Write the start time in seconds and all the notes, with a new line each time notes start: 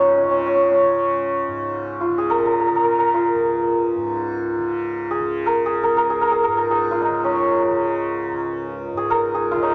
Already playing: C#2 G#2 C#3 D#4 F4
0.07 C#4
0.16 C#4
0.22 C#3 C#4
0.31 C#4
0.40 C#4
0.46 C#4
0.55 C#4
0.63 C#4
0.70 C#4
0.82 C#3
1.48 G#2
2.01 F4
2.09 C#3
2.18 G#4
2.30 A#4
2.38 A#4
2.46 A#4
2.52 A#4
2.60 A#4
2.67 A#4
2.71 C#3 A#4
2.83 A#4
2.99 A#4
3.14 F4
3.33 C#2
3.96 G#2
4.58 C#3
5.11 G#4
5.19 C#3
5.46 A#4
5.66 G#4
5.82 C#2 A#4
5.97 A#4
6.10 G#4
6.21 A#4
6.32 G#4
6.44 G#2 A#4
6.57 A#4
6.71 G#4
6.91 F4
7.02 D#4
7.09 C#3
7.24 C#4
7.69 C#3
8.32 C#2
8.93 G#2
8.97 G#4
9.10 A#4
9.34 G#4
9.51 C#3 F4
9.56 D#5 F5
9.62 D#4 G#4 A#4 C#5
9.70 F4